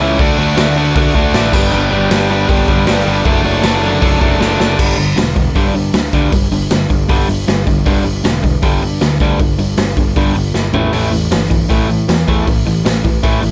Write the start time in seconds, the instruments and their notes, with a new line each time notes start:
0.00 picked electric bass C#2, overdriven electric guitar A2 E3 A3 C#4 E4
0.19 picked electric bass D2, overdriven electric guitar D3 A3 D4 F#4, kick, open hi-hat
0.37 picked electric bass D2, overdriven electric guitar D3 A3 D4 F#4
0.57 picked electric bass D2, overdriven electric guitar D3 A3 D4 F#4, snare, open hi-hat
0.77 overdriven electric guitar D3 A3 D4 F#4
0.95 picked electric bass D2, overdriven electric guitar D3 A3 D4 F#4, kick, open hi-hat
1.15 picked electric bass D2, overdriven electric guitar D3 A3 D4 F#4, kick
1.34 picked electric bass A1, overdriven electric guitar D3 A3 D4 F#4, snare, open hi-hat
1.53 picked electric bass G1, distorted electric guitar G2 D3, overdriven electric guitar G3 B3 D4 G4, kick, crash
1.71 picked electric bass G1, distorted electric guitar G2 D3, overdriven electric guitar G3 B3 D4 G4
1.91 picked electric bass G1, distorted electric guitar G2 D3, overdriven electric guitar G3 B3 D4 G4
2.10 picked electric bass G1, distorted electric guitar G2 D3, overdriven electric guitar G3 B3 D4 G4, snare, open hi-hat
2.29 distorted electric guitar G2 D3, overdriven electric guitar G3 B3 D4 G4
2.48 picked electric bass G1, distorted electric guitar G2 D3, overdriven electric guitar G3 B3 D4 G4, kick, open hi-hat
2.68 picked electric bass G1, distorted electric guitar G2 D3, overdriven electric guitar G3 B3 D4 G4, kick
2.87 picked electric bass G1, distorted electric guitar G2 D3, overdriven electric guitar G3 B3 D4 G4, snare, open hi-hat
3.05 picked electric bass G1, distorted electric guitar G2 D3, overdriven electric guitar G3 B3 D4 G4
3.24 picked electric bass F#1, distorted electric guitar D3, overdriven electric guitar F#3 A3 D4 A4, kick, open hi-hat
3.44 picked electric bass F#1, distorted electric guitar D3, overdriven electric guitar F#3 A3 D4 A4
3.63 picked electric bass F#1, distorted electric guitar D3, overdriven electric guitar F#3 A3 D4 A4, snare, open hi-hat
3.82 distorted electric guitar D3, overdriven electric guitar F#3 A3 D4 A4
4.01 picked electric bass F#1, distorted electric guitar D3, overdriven electric guitar F#3 A3 D4 A4, kick, open hi-hat
4.20 picked electric bass F#1, distorted electric guitar D3, overdriven electric guitar F#3 A3 D4 A4, kick
4.39 picked electric bass F#1, distorted electric guitar D3, overdriven electric guitar F#3 A3 D4 A4, snare
4.58 picked electric bass F#1, distorted electric guitar D3, overdriven electric guitar F#3 A3 D4 A4, snare
4.78 picked electric bass G1, overdriven electric guitar G2 D3 G3, kick, crash
4.97 picked electric bass G1, overdriven electric guitar G2 D3, open hi-hat
5.16 picked electric bass E1, overdriven electric guitar G2 D3, snare, open hi-hat
5.36 overdriven electric guitar G2 D3, kick, open hi-hat
5.55 picked electric bass G1, overdriven electric guitar G2 D3 G3, kick, open hi-hat
5.74 overdriven electric guitar G2 D3, picked electric bass G2, open hi-hat
5.94 picked electric bass D2, overdriven electric guitar G2 D3, snare, open hi-hat
6.13 picked electric bass D2, overdriven electric guitar G2 D3 G3, kick, open hi-hat
6.32 picked electric bass G1, overdriven electric guitar G2 D3, kick, open hi-hat
6.51 picked electric bass G1, overdriven electric guitar G2 D3, open hi-hat
6.70 picked electric bass G1, overdriven electric guitar G2 D3, snare, open hi-hat
6.89 picked electric bass G1, overdriven electric guitar G2 D3, kick, open hi-hat
7.09 picked electric bass G1, overdriven electric guitar G2 D3 G3, kick, open hi-hat
7.28 picked electric bass G1, overdriven electric guitar G2 D3, open hi-hat
7.48 picked electric bass G1, overdriven electric guitar G2 D3, snare, open hi-hat
7.67 picked electric bass G1, overdriven electric guitar G2 D3, kick, open hi-hat
7.86 picked electric bass G1, overdriven electric guitar G2 D3 G3, kick, open hi-hat
8.04 picked electric bass G1, overdriven electric guitar G2 D3, open hi-hat
8.24 picked electric bass E1, overdriven electric guitar G2 D3, snare, open hi-hat
8.43 overdriven electric guitar G2 D3, kick, open hi-hat
8.62 picked electric bass G1, overdriven electric guitar G2 D3 G3, kick, open hi-hat
8.82 overdriven electric guitar G2 D3, picked electric bass G2, open hi-hat
9.01 picked electric bass D2, overdriven electric guitar G2 D3, snare, open hi-hat
9.20 picked electric bass D2, overdriven electric guitar G2 D3 G3, kick, open hi-hat
9.39 picked electric bass G1, overdriven electric guitar G2 D3, kick, open hi-hat
9.59 picked electric bass G1, overdriven electric guitar G2 D3, open hi-hat
9.78 picked electric bass G1, overdriven electric guitar G2 D3, snare, open hi-hat
9.97 picked electric bass G1, overdriven electric guitar G2 D3, kick, open hi-hat
10.16 picked electric bass G1, overdriven electric guitar G2 D3 G3, kick, open hi-hat
10.35 picked electric bass G1, overdriven electric guitar G2 D3, open hi-hat
10.54 picked electric bass G1, overdriven electric guitar G2 D3, snare
10.72 picked electric bass A1, overdriven electric guitar A2 E3 A3, floor tom
10.93 picked electric bass A1, overdriven electric guitar A2 E3 A3, open hi-hat
11.11 picked electric bass A1, overdriven electric guitar A2 E3, open hi-hat
11.31 picked electric bass G1, overdriven electric guitar A2 E3, snare, open hi-hat
11.50 overdriven electric guitar A2 E3, kick, open hi-hat
11.69 picked electric bass A1, overdriven electric guitar A2 E3 A3, kick, open hi-hat
11.89 picked electric bass A2, overdriven electric guitar A2 E3, open hi-hat
12.08 picked electric bass E2, overdriven electric guitar A2 E3, snare, open hi-hat
12.28 picked electric bass E2, overdriven electric guitar A2 E3 A3, kick, open hi-hat
12.47 picked electric bass A1, overdriven electric guitar A2 E3, kick, open hi-hat
12.66 picked electric bass A1, overdriven electric guitar A2 E3, open hi-hat
12.85 picked electric bass A1, overdriven electric guitar A2 E3, snare, open hi-hat
13.04 picked electric bass A1, overdriven electric guitar A2 E3, kick, open hi-hat
13.23 picked electric bass A1, overdriven electric guitar A2 E3 A3, kick, open hi-hat
13.42 picked electric bass A1, overdriven electric guitar A2 E3, open hi-hat